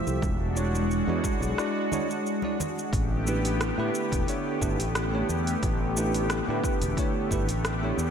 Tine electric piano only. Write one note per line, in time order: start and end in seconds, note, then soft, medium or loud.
0.00 0.20 A3 medium
0.00 0.21 E4 medium
0.00 0.21 F4 medium
0.00 0.21 G4 medium
0.00 0.21 C5 medium
0.55 1.03 G#3 medium
0.55 1.03 D4 medium
0.55 1.04 E4 medium
0.55 1.04 F#4 medium
0.55 1.04 C#5 loud
1.08 1.54 G#3 medium
1.08 1.54 D4 medium
1.08 1.54 E4 medium
1.08 1.54 F#4 medium
1.08 1.55 C#5 loud
1.57 1.88 G#3 medium
1.57 1.88 D4 medium
1.57 1.89 E4 medium
1.57 1.89 F#4 medium
1.57 1.89 D5 medium
1.91 2.07 G#3 medium
1.91 2.07 D4 medium
1.91 2.07 E4 medium
1.91 2.07 F#4 medium
1.91 2.08 C#5 medium
2.43 2.56 G#3 medium
2.43 2.56 D4 medium
2.43 2.57 E4 medium
2.43 2.57 F#4 medium
2.43 2.57 D5 medium
3.27 3.74 A3 medium
3.27 3.74 D4 medium
3.27 3.74 E4 medium
3.27 3.75 G4 medium
3.27 3.75 B4 medium
3.78 4.24 A3 medium
3.78 4.24 D4 medium
3.78 4.24 E4 medium
3.78 4.24 G4 medium
3.78 4.25 B4 loud
4.27 4.58 A3 medium
4.27 4.58 D4 medium
4.27 4.58 E4 medium
4.27 4.59 G4 medium
4.27 4.59 C#5 medium
4.61 4.77 A3 medium
4.61 4.77 D4 medium
4.61 4.77 E4 medium
4.61 4.77 G4 medium
4.61 4.77 B4 loud
5.13 5.26 A3 medium
5.13 5.26 D4 medium
5.13 5.27 E4 medium
5.13 5.27 G4 medium
5.13 5.27 C#5 medium
5.96 6.43 A3 medium
5.96 6.44 D4 medium
5.96 6.44 E4 medium
5.96 6.44 G4 medium
5.96 6.45 B4 medium
6.49 6.94 A3 medium
6.49 6.94 D4 medium
6.49 6.94 E4 medium
6.49 6.95 G4 medium
6.49 6.95 B4 loud
6.97 7.28 A3 medium
6.97 7.28 D4 medium
6.97 7.28 E4 medium
6.97 7.28 G4 medium
6.97 7.29 C#5 medium
7.31 7.46 A3 medium
7.31 7.47 D4 medium
7.31 7.47 E4 medium
7.31 7.47 G4 medium
7.31 7.47 B4 loud
7.82 7.96 A3 medium
7.82 7.96 D4 medium
7.82 7.96 E4 medium
7.82 7.96 G4 medium
7.82 7.97 C#5 medium